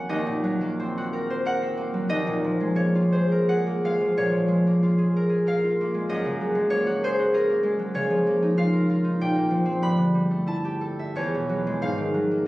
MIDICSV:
0, 0, Header, 1, 2, 480
1, 0, Start_track
1, 0, Tempo, 672646
1, 61, Time_signature, 3, 2, 24, 8
1, 1980, Tempo, 734394
1, 2460, Tempo, 665188
1, 2940, Tempo, 628931
1, 7260, Tempo, 662252
1, 9173, End_track
2, 0, Start_track
2, 0, Title_t, "Harp"
2, 0, Program_c, 0, 46
2, 0, Note_on_c, 0, 54, 44
2, 0, Note_on_c, 0, 58, 43
2, 0, Note_on_c, 0, 60, 45
2, 0, Note_on_c, 0, 63, 49
2, 0, Note_on_c, 0, 66, 49
2, 0, Note_on_c, 0, 70, 44
2, 0, Note_on_c, 0, 72, 42
2, 0, Note_on_c, 0, 77, 70
2, 0, Note_on_c, 0, 78, 71
2, 66, Note_on_c, 0, 39, 57
2, 68, Note_on_c, 0, 75, 80
2, 79, Note_off_c, 0, 77, 0
2, 191, Note_on_c, 0, 46, 44
2, 304, Note_off_c, 0, 54, 0
2, 313, Note_on_c, 0, 54, 47
2, 426, Note_off_c, 0, 58, 0
2, 435, Note_on_c, 0, 58, 43
2, 559, Note_off_c, 0, 60, 0
2, 567, Note_on_c, 0, 60, 49
2, 688, Note_off_c, 0, 66, 0
2, 697, Note_on_c, 0, 66, 48
2, 797, Note_off_c, 0, 70, 0
2, 806, Note_on_c, 0, 70, 48
2, 921, Note_off_c, 0, 72, 0
2, 930, Note_on_c, 0, 72, 49
2, 989, Note_off_c, 0, 63, 0
2, 1031, Note_off_c, 0, 70, 0
2, 1034, Note_off_c, 0, 78, 0
2, 1037, Note_on_c, 0, 70, 45
2, 1045, Note_on_c, 0, 78, 75
2, 1147, Note_off_c, 0, 60, 0
2, 1156, Note_on_c, 0, 60, 44
2, 1257, Note_off_c, 0, 58, 0
2, 1265, Note_on_c, 0, 58, 47
2, 1375, Note_off_c, 0, 54, 0
2, 1384, Note_on_c, 0, 54, 45
2, 1485, Note_off_c, 0, 75, 0
2, 1486, Note_off_c, 0, 39, 0
2, 1492, Note_on_c, 0, 39, 53
2, 1496, Note_on_c, 0, 75, 89
2, 1521, Note_off_c, 0, 46, 0
2, 1522, Note_off_c, 0, 60, 0
2, 1526, Note_off_c, 0, 72, 0
2, 1620, Note_on_c, 0, 46, 47
2, 1743, Note_on_c, 0, 53, 42
2, 1858, Note_on_c, 0, 56, 47
2, 1960, Note_off_c, 0, 58, 0
2, 1966, Note_on_c, 0, 58, 46
2, 1970, Note_on_c, 0, 73, 68
2, 2095, Note_on_c, 0, 65, 46
2, 2208, Note_on_c, 0, 72, 77
2, 2217, Note_on_c, 0, 68, 51
2, 2315, Note_off_c, 0, 75, 0
2, 2326, Note_off_c, 0, 70, 0
2, 2334, Note_on_c, 0, 70, 50
2, 2438, Note_off_c, 0, 78, 0
2, 2442, Note_off_c, 0, 68, 0
2, 2446, Note_on_c, 0, 78, 85
2, 2450, Note_on_c, 0, 68, 47
2, 2565, Note_off_c, 0, 58, 0
2, 2574, Note_on_c, 0, 58, 50
2, 2628, Note_off_c, 0, 72, 0
2, 2694, Note_off_c, 0, 56, 0
2, 2703, Note_on_c, 0, 56, 49
2, 2706, Note_on_c, 0, 77, 76
2, 2810, Note_off_c, 0, 53, 0
2, 2819, Note_on_c, 0, 53, 47
2, 2931, Note_off_c, 0, 46, 0
2, 2931, Note_off_c, 0, 73, 0
2, 2938, Note_on_c, 0, 46, 58
2, 2942, Note_on_c, 0, 73, 86
2, 2951, Note_off_c, 0, 78, 0
2, 2957, Note_off_c, 0, 39, 0
2, 2961, Note_off_c, 0, 54, 0
2, 2972, Note_off_c, 0, 66, 0
2, 3039, Note_off_c, 0, 53, 0
2, 3048, Note_on_c, 0, 53, 44
2, 3165, Note_off_c, 0, 56, 0
2, 3174, Note_on_c, 0, 56, 46
2, 3308, Note_off_c, 0, 58, 0
2, 3317, Note_on_c, 0, 58, 47
2, 3429, Note_off_c, 0, 65, 0
2, 3438, Note_on_c, 0, 65, 49
2, 3548, Note_off_c, 0, 68, 0
2, 3557, Note_on_c, 0, 68, 45
2, 3687, Note_off_c, 0, 70, 0
2, 3696, Note_on_c, 0, 70, 49
2, 3785, Note_off_c, 0, 68, 0
2, 3794, Note_on_c, 0, 68, 49
2, 3917, Note_off_c, 0, 70, 0
2, 3925, Note_off_c, 0, 77, 0
2, 3926, Note_on_c, 0, 70, 51
2, 3934, Note_on_c, 0, 77, 81
2, 4048, Note_off_c, 0, 65, 0
2, 4058, Note_on_c, 0, 65, 50
2, 4177, Note_off_c, 0, 58, 0
2, 4187, Note_on_c, 0, 58, 52
2, 4280, Note_off_c, 0, 56, 0
2, 4289, Note_on_c, 0, 56, 49
2, 4395, Note_off_c, 0, 53, 0
2, 4402, Note_off_c, 0, 46, 0
2, 4405, Note_on_c, 0, 75, 85
2, 4409, Note_on_c, 0, 42, 62
2, 4413, Note_off_c, 0, 77, 0
2, 4415, Note_off_c, 0, 65, 0
2, 4524, Note_on_c, 0, 49, 49
2, 4645, Note_on_c, 0, 54, 47
2, 4744, Note_off_c, 0, 56, 0
2, 4753, Note_on_c, 0, 56, 49
2, 4860, Note_off_c, 0, 73, 0
2, 4864, Note_off_c, 0, 58, 0
2, 4869, Note_on_c, 0, 73, 81
2, 4873, Note_on_c, 0, 58, 49
2, 4994, Note_on_c, 0, 66, 51
2, 5117, Note_off_c, 0, 68, 0
2, 5124, Note_on_c, 0, 68, 54
2, 5128, Note_on_c, 0, 72, 85
2, 5200, Note_off_c, 0, 75, 0
2, 5232, Note_off_c, 0, 66, 0
2, 5241, Note_on_c, 0, 66, 47
2, 5347, Note_off_c, 0, 70, 0
2, 5348, Note_off_c, 0, 68, 0
2, 5354, Note_on_c, 0, 68, 56
2, 5358, Note_on_c, 0, 70, 70
2, 5466, Note_off_c, 0, 58, 0
2, 5476, Note_on_c, 0, 58, 50
2, 5516, Note_off_c, 0, 72, 0
2, 5568, Note_off_c, 0, 56, 0
2, 5578, Note_on_c, 0, 56, 53
2, 5692, Note_off_c, 0, 54, 0
2, 5701, Note_on_c, 0, 54, 48
2, 5810, Note_off_c, 0, 49, 0
2, 5811, Note_off_c, 0, 73, 0
2, 5817, Note_on_c, 0, 49, 60
2, 5822, Note_on_c, 0, 73, 90
2, 5837, Note_off_c, 0, 54, 0
2, 5846, Note_off_c, 0, 42, 0
2, 5847, Note_off_c, 0, 66, 0
2, 5939, Note_on_c, 0, 53, 51
2, 6055, Note_off_c, 0, 58, 0
2, 6064, Note_on_c, 0, 58, 50
2, 6182, Note_on_c, 0, 63, 46
2, 6296, Note_on_c, 0, 65, 54
2, 6301, Note_on_c, 0, 77, 88
2, 6409, Note_off_c, 0, 70, 0
2, 6418, Note_on_c, 0, 70, 46
2, 6533, Note_off_c, 0, 65, 0
2, 6542, Note_on_c, 0, 65, 50
2, 6646, Note_off_c, 0, 63, 0
2, 6655, Note_on_c, 0, 63, 49
2, 6785, Note_on_c, 0, 46, 59
2, 6786, Note_on_c, 0, 79, 86
2, 6795, Note_off_c, 0, 63, 0
2, 6797, Note_off_c, 0, 49, 0
2, 6797, Note_off_c, 0, 56, 0
2, 6798, Note_off_c, 0, 73, 0
2, 6807, Note_off_c, 0, 68, 0
2, 6886, Note_off_c, 0, 58, 0
2, 6895, Note_on_c, 0, 58, 51
2, 6999, Note_off_c, 0, 53, 0
2, 7008, Note_on_c, 0, 53, 48
2, 7123, Note_on_c, 0, 60, 50
2, 7250, Note_on_c, 0, 43, 55
2, 7254, Note_on_c, 0, 83, 93
2, 7270, Note_off_c, 0, 60, 0
2, 7273, Note_off_c, 0, 53, 0
2, 7277, Note_off_c, 0, 58, 0
2, 7279, Note_off_c, 0, 70, 0
2, 7281, Note_off_c, 0, 65, 0
2, 7281, Note_off_c, 0, 77, 0
2, 7283, Note_off_c, 0, 46, 0
2, 7361, Note_on_c, 0, 50, 45
2, 7485, Note_on_c, 0, 55, 46
2, 7602, Note_on_c, 0, 57, 42
2, 7718, Note_on_c, 0, 64, 50
2, 7724, Note_on_c, 0, 81, 78
2, 7849, Note_on_c, 0, 67, 46
2, 7967, Note_on_c, 0, 69, 48
2, 8099, Note_on_c, 0, 76, 48
2, 8217, Note_on_c, 0, 40, 55
2, 8223, Note_on_c, 0, 73, 73
2, 8242, Note_off_c, 0, 50, 0
2, 8243, Note_off_c, 0, 69, 0
2, 8243, Note_off_c, 0, 81, 0
2, 8244, Note_off_c, 0, 57, 0
2, 8245, Note_off_c, 0, 43, 0
2, 8245, Note_off_c, 0, 55, 0
2, 8246, Note_off_c, 0, 67, 0
2, 8253, Note_off_c, 0, 79, 0
2, 8356, Note_on_c, 0, 47, 42
2, 8461, Note_on_c, 0, 54, 41
2, 8588, Note_on_c, 0, 56, 45
2, 8696, Note_on_c, 0, 44, 54
2, 8700, Note_on_c, 0, 77, 70
2, 8725, Note_off_c, 0, 64, 0
2, 8727, Note_off_c, 0, 40, 0
2, 8727, Note_off_c, 0, 73, 0
2, 8728, Note_off_c, 0, 83, 0
2, 8729, Note_off_c, 0, 76, 0
2, 8733, Note_off_c, 0, 47, 0
2, 8814, Note_on_c, 0, 51, 39
2, 8923, Note_off_c, 0, 54, 0
2, 8931, Note_on_c, 0, 54, 42
2, 9055, Note_on_c, 0, 58, 35
2, 9173, Note_off_c, 0, 44, 0
2, 9173, Note_off_c, 0, 51, 0
2, 9173, Note_off_c, 0, 54, 0
2, 9173, Note_off_c, 0, 56, 0
2, 9173, Note_off_c, 0, 58, 0
2, 9173, Note_off_c, 0, 77, 0
2, 9173, End_track
0, 0, End_of_file